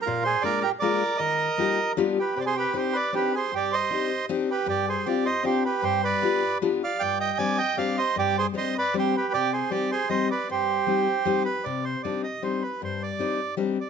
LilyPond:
<<
  \new Staff \with { instrumentName = "Bandoneon" } { \time 3/4 \key ees \major \tempo 4 = 155 << { bes'8 c''8 d''8 bes'8 d''4 | ees''2 r8 b'8 | \key c \minor c''32 d''32 c''16 b'8 c''8 d''8 b'8 c''8 | d''8 ees''4. r8 b'8 |
d''8 c''8 d''8 ees''8 c''8 b'8 | c''8 d''4. r8 f''8 | g''8 g''8 aes''8 g''8 f''8 ees''8 | d''8 c''8 ees''8 d''8 c''8 b'8 |
d''8 c''8 d''8 c''8 ees''8 d''8 | c''2~ c''8 b'8 | d''8 c''8 d''8 ees''8 c''8 b'8 | c''8 d''4. r8 d''8 | } \\ { f'8 aes'8 bes'8 g'8 bes'4 | bes'2 r8 g'8 | g'16 aes'16 g'8 g'8 b'8 g'8 aes'8 | g'8 c''4. r8 g'8 |
g'8 aes'8 g'8 c''8 g'8 g'8 | g'8 b'4. r8 d''8 | d''8 ees''8 d''8 ees''8 d''8 c''8 | g'8 aes'8 c''8 b'8 g'8 g'8 |
g'8 aes'8 g'8 aes'8 c''8 b'8 | g'2~ g'8 r8 | r2. | r2. | } >> }
  \new Staff \with { instrumentName = "Steel-string acoustic guitar" } { \time 3/4 \key ees \major bes,4 <aes bes d' f' aes'>8 r8 <aes bes d' f' aes'>8 r8 | ees4 <g bes ees' f' g'>8 r8 <g b d' f' g'>8 r8 | \key c \minor c4 <c' d' ees' g'>8 r8 <c' d' ees' g'>8 r8 | g,4 <c' d' ees' g'>8 r8 <c' d' ees' g'>8 r8 |
g,4 <c' d' f' g'>8 r8 <c' d' f' g'>8 r8 | g,4 <b d' f' g'>8 r8 <b d' f' g'>8 r8 | g,4 <g c' d' g'>8 r8 <g c' d' g'>8 r8 | g,4 <g c' d' g'>8 r8 <g c' d' g'>8 r8 |
c4 <g c' ees' g'>8 r8 <g c' ees' g'>8 r8 | g,4 <g c' ees' g'>8 r8 <g c' ees' g'>8 r8 | c4 <g c' d' ees'>8 r8 <g c' d' ees'>8 r8 | g,4 <g c' d' ees'>8 r8 <g c' d' ees'>8 r8 | }
>>